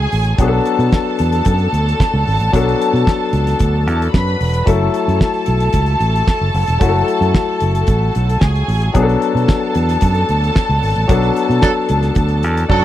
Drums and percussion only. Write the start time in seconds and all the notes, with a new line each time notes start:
0.12 open hi-hat
0.24 closed hi-hat
0.38 kick, closed hi-hat
0.65 closed hi-hat
0.80 closed hi-hat
0.92 kick, snare
1.19 closed hi-hat
1.32 closed hi-hat
1.45 kick, closed hi-hat
1.59 closed hi-hat
1.74 closed hi-hat
1.89 closed hi-hat
2.00 kick, snare
2.28 open hi-hat
2.40 closed hi-hat
2.53 kick, closed hi-hat
2.69 closed hi-hat
2.81 closed hi-hat
2.96 closed hi-hat
3.07 kick, snare
3.33 closed hi-hat
3.47 snare, closed hi-hat
3.59 kick, closed hi-hat
3.88 closed hi-hat
4.02 closed hi-hat
4.14 kick, snare
4.27 closed hi-hat
4.40 open hi-hat
4.53 closed hi-hat
4.67 kick, closed hi-hat
4.94 closed hi-hat
5.09 closed hi-hat
5.21 kick, snare
5.34 closed hi-hat
5.46 closed hi-hat
5.60 closed hi-hat
5.73 kick, closed hi-hat
5.86 closed hi-hat
6.00 closed hi-hat
6.16 closed hi-hat
6.27 kick, snare
6.54 open hi-hat
6.67 closed hi-hat
6.81 kick, closed hi-hat
7.08 closed hi-hat
7.22 closed hi-hat
7.34 kick, snare
7.60 closed hi-hat
7.75 closed hi-hat
7.87 kick, closed hi-hat
8.15 closed hi-hat
8.29 closed hi-hat
8.41 kick, snare
8.55 closed hi-hat
8.69 open hi-hat
8.82 closed hi-hat
8.95 kick, closed hi-hat
9.09 closed hi-hat
9.22 closed hi-hat
9.37 closed hi-hat
9.48 kick, snare
9.75 closed hi-hat
9.89 snare, closed hi-hat
10.01 kick, closed hi-hat
10.14 closed hi-hat
10.29 closed hi-hat
10.44 closed hi-hat
10.56 kick, snare
10.83 open hi-hat
10.96 closed hi-hat
11.09 kick, closed hi-hat
11.23 closed hi-hat
11.36 closed hi-hat
11.51 closed hi-hat
11.62 kick, snare
11.89 closed hi-hat
12.03 snare, closed hi-hat
12.15 kick, closed hi-hat
12.28 closed hi-hat
12.43 closed hi-hat
12.57 closed hi-hat
12.70 kick, high tom